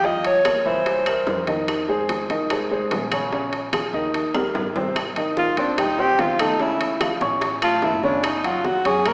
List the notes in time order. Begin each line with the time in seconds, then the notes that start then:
Already playing: G2
0.04 F3 F4 D#5 F5, high bongo, high conga
0.24 C#5, high bongo, high conga, high timbale
0.45 A#3 A#4 C#5, high bongo, high conga, high timbale, low timbale, claves
0.65 C2 E3 E4 C5 E5, high conga
0.86 high bongo, high conga, high timbale
1.06 G3 G4 A#4, high bongo, high conga, high timbale, claves
1.27 F2, high bongo, low bongo, high conga, low timbale
1.47 D#3 D#4 D#5, high bongo, high conga, high timbale
1.68 high bongo, high conga, high timbale, claves
1.89 G#3 G#4 C5, high conga
2.09 high bongo, high conga, high timbale, low timbale
2.30 C2 D#3 D#4 D#5, high conga, high timbale
2.50 G#3 G#4 C5, high bongo, high conga, high timbale, claves
2.71 G#3 G#4 C5, high conga
2.91 A#1, high bongo, low bongo, high conga, high timbale, low timbale
3.11 C#3 C#4 C#5, high conga, high timbale, claves
3.32 C#3 C#4 C#5, high bongo, high conga
3.53 high bongo, high conga, high timbale
3.73 F3 F4 G#4, high bongo, high conga, high timbale, low timbale, claves
3.93 D#2 D#3 D#4 D#5, high conga
4.14 high bongo, high conga, high timbale
4.34 G3 G4 A#4, high bongo, high conga, high timbale, claves
4.54 G#1, high bongo, low bongo, high conga, low timbale
4.75 C3 C4 C5, high bongo, high conga, low timbale
4.96 high bongo, high conga, high timbale, claves
5.16 D#3 D#4 D#5, high conga, high timbale
5.37 F4, high bongo, high conga
5.57 D#2 C4 D4 C5 C6, high conga, high timbale
5.78 G3 D#4 G4 G5, high bongo, high conga, low conga, high timbale, claves
5.99 C4 G4 C5 C6, high conga, low conga
6.19 C#2 F4, high bongo, low bongo, high conga, high timbale
6.39 A3 D#4 A4 A5, high conga, high timbale, claves
6.60 C#3 C#4 E4 C#5, high bongo, high conga
6.80 high conga, high timbale
7.00 F3 F4 F5, high bongo, high conga, high timbale, claves
7.21 A1 C#4 C#5 C#6, high bongo, high conga
7.41 high bongo, high conga, high timbale
7.62 A3 F4 A4 A5, high bongo, high conga, high timbale, claves
7.82 F#1 E4, high bongo, low bongo, high conga
8.03 C#3 C#4 D4 C#5, high bongo, high conga
8.23 D#4, high bongo, high conga, high timbale, claves
8.44 F#3 F4 F#4 F#5, high conga, high timbale
8.65 F#4, high bongo, high conga
8.85 F#2 C#4 G#4 C#5 C#6, high conga, high timbale
9.05 A#3 A#4 A#5, high bongo, high conga, low conga, high timbale, claves